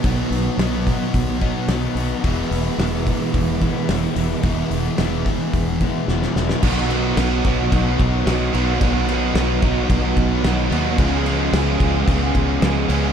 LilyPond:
<<
  \new Staff \with { instrumentName = "Overdriven electric guitar" } { \time 4/4 \key b \major \tempo 4 = 110 <b, dis fis b dis'>4 <dis fis b dis'>4. <fis b dis'>8 <dis fis b dis'>8 <fis b dis'>8 | <e gis b e'>4 <e gis b e'>4. <gis b e'>8 <e gis b e'>8 <gis b e'>8 | <e gis b e'>4 <e gis b e'>4. <gis b e'>8 <e gis b e'>8 <gis b e'>8 | <b, dis fis b dis'>8 <fis b dis'>8 <dis fis b dis'>8 <fis b dis'>8 <b, dis fis b dis'>8 <fis b dis'>8 <dis fis b dis'>8 <fis b dis'>8 |
<b, dis fis b dis'>8 <fis b dis'>8 <dis fis b dis'>8 <fis b dis'>8 <b, dis fis b dis'>8 <fis b dis'>8 <dis fis b dis'>8 <fis b dis'>8 | <cis gis b eis'>8 <gis b eis'>8 <cis gis b eis'>8 <gis b eis'>8 <cis gis b eis'>8 <gis b eis'>8 <cis gis b eis'>8 <gis b eis'>8 | }
  \new Staff \with { instrumentName = "Overdriven electric guitar" } { \time 4/4 \key b \major <b, fis b dis' fis'>1 | <e, b, e b e' gis'>1~ | <e, b, e b e' gis'>1 | <b, fis b dis' fis'>8 <b dis' fis'>8 <fis b dis' fis'>8 <b dis' fis'>4. <fis b dis' fis'>8 <b dis' fis'>8 |
<b, fis b dis' fis'>8 <b dis' fis'>8 <fis b dis' fis'>8 <b dis' fis'>4. <fis b dis' fis'>8 <b dis' fis'>8 | <cis eis gis b gis'>8 <gis b gis'>8 <eis gis b gis'>8 <gis b gis'>4. <eis gis b gis'>8 <gis b gis'>8 | }
  \new Staff \with { instrumentName = "Distorted electric guitar" } { \clef bass \time 4/4 \key b \major <b, fis b>1 | <e, b, e>1 | <e, b, e>1 | <b, fis b>2.~ <b, fis b>8 <b, fis b>8 |
<b, fis b>2.~ <b, fis b>8 <b, fis b>8 | <cis gis cis'>2.~ <cis gis cis'>8 <cis gis cis'>8 | }
  \new Staff \with { instrumentName = "Fingered electric bass" } { \clef bass \time 4/4 \key b \major b,,8 b,,8 b,,4 b,,4 b,,8 b,,8 | e,,8 e,,8 e,,4 e,,4 e,,8 e,,8 | e,,8 e,,8 e,,4 e,,4 e,,8 e,,8 | b,,4 b,,8 b,,8 b,,8 b,,8 b,,8 b,,8 |
b,,4 b,,8 b,,8 b,,8 b,,8 b,,8 dis,8 | cis,4 cis,8 cis,8 cis,8 cis,8 cis,8 cis,8 | }
  \new DrumStaff \with { instrumentName = "Drums" } \drummode { \time 4/4 <hho bd>8 hho8 <hho sn>8 <hho bd sn>8 <hho bd>8 <hho bd>8 <hho sn>8 hho8 | <hho bd>8 hho8 <hho sn>8 <hho bd>8 <hho bd>8 <hho bd>8 <hho sn>8 hho8 | <hho bd>8 hho8 <hho sn>8 <hho bd sn>8 <hho bd>8 <hho bd>8 sn16 sn16 sn16 sn16 | <cymc bd>8 cymc8 <cymc sn>8 <cymc bd sn>8 <cymc bd>8 <cymc bd>8 <cymc sn>8 cymc8 |
<cymc bd>8 cymc8 <cymc sn>8 <cymc bd>8 <cymc bd>8 <cymc bd>8 <cymc sn>8 cymc8 | <cymc bd>8 cymc8 <cymc sn>8 <cymc bd>8 <cymc bd>8 <cymc bd>8 <cymc sn>8 cymc8 | }
>>